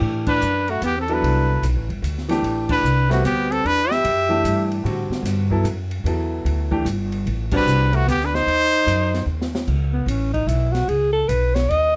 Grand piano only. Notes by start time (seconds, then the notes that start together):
Already playing: E3 A3 D4 G4
1.09 F#3 B3 E4 A4
2.28 E3 A3 D4 G4
3.09 G3 C4 F#4 B4
4.29 E3 A3 D4 G4
4.84 D3 G3 C4 F#4
5.50 F#3 B3 E4 A4
6.06 F#3 B3 E4 A4
6.71 E3 A3 D4 G4
7.52 G3 C4 F#4 B4